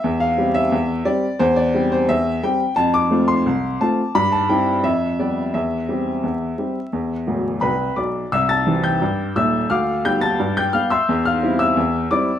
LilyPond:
<<
  \new Staff \with { instrumentName = "Upright piano" } { \time 2/4 \key c \major \tempo 4 = 87 e''16 f''8 e''8. d''8 | c''16 d''8 c''16 e''8 g''8 | a''16 d'''8 c'''8. a''8 | b''16 a''16 g''8 e''8 d''8 |
e''2~ | e''4 <b' g'' b''>8 <d'' d'''>8 | <e'' e'''>16 <a'' a'''>8 <g'' g'''>8. <e'' e'''>8 | <f'' d''' f'''>8 <g'' g'''>16 <a'' a'''>8 <g'' g'''>16 <f'' f'''>16 <e'' c''' e'''>16~ |
<e'' c''' e'''>16 <f'' f'''>8 <e'' e'''>8. <d'' d'''>8 | }
  \new Staff \with { instrumentName = "Upright piano" } { \clef bass \time 2/4 \key c \major e,8 <g c' g'>8 e,8 <g c' g'>8 | e,8 <g c' g'>8 e,8 <g c' g'>8 | f,8 <a c' f'>8 c,8 <a c' f'>8 | g,8 <g c' e'>8 f,8 <g b g'>8 |
e,8 <g c' g'>8 e,8 <g c' g'>8 | e,8 <d,, d,>8 c,8 b,,8 | c,8 <e c' g'>8 g,8 <ees,, ees,>8 | d,8 <g b g'>8 g,8 <g b g'>8 |
e,8 <g c' e'>8 e,8 <g c' e'>8 | }
>>